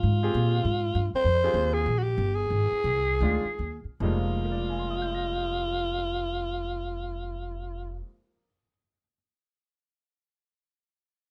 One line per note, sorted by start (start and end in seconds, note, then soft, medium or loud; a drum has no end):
0.00 0.33 G#2 medium
0.00 1.10 F4 medium
0.23 0.62 C4 medium
0.23 0.62 F4 medium
0.23 0.62 G4 medium
0.23 0.62 G#4 medium
0.34 0.63 A#2 loud
0.65 0.94 G#2 medium
0.95 1.12 G2 medium
1.14 1.75 C5 loud
1.14 muted upright bass stroke soft
1.24 1.53 F2 medium
1.43 1.83 C4 medium
1.43 1.84 F4 medium
1.43 1.84 G4 medium
1.43 1.84 G#4 medium
1.54 1.84 D#2 loud
1.74 2.00 G#4 medium
1.86 2.17 A#1 medium
1.98 2.04 F#4 medium
2.03 2.37 G4 loud
2.18 2.49 G1 medium
2.35 3.83 G#4 medium
2.50 2.70 G#1 medium
2.72 muted upright bass stroke soft
2.84 3.19 C2 loud
3.21 3.43 D2 medium
3.21 3.42 D#3 medium
3.21 3.43 G#3 medium
3.21 3.43 D4 medium
3.21 3.43 F4 medium
3.45 muted upright bass stroke soft
3.59 3.83 D#2 medium
3.84 muted upright bass stroke soft
4.00 8.00 F1 loud
4.00 8.04 F2 medium
4.00 8.05 F3 medium
4.00 8.07 G3 medium
4.00 8.05 G#3 medium
4.00 8.06 A#3 medium
4.00 8.07 D#4 medium
4.00 8.01 F4 medium
4.45 8.44 A#4 soft
4.52 8.52 D5 soft
4.61 8.60 F5 soft
4.69 8.69 G#5 soft
4.79 8.79 C6 soft
4.90 8.90 D#6 soft
5.02 9.01 G6 soft
5.14 9.14 A#6 soft